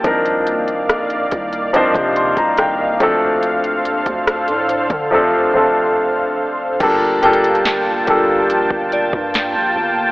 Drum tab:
CC |--------------------------------|--------------------------------|x-------------------------------|
HH |x-x-x-x-x-x-x-x-x-x-x-x-x---x---|x-x-x-x-x-x-x-x-----------------|x---xxxxx---x---x---x---x-------|
SD |--------r---------------r-------|--------r-----------------------|--------o---------------o-------|
BD |o-----------o-----o---o-----o---|------o-------o-----------------|o-----------o-----o---o---------|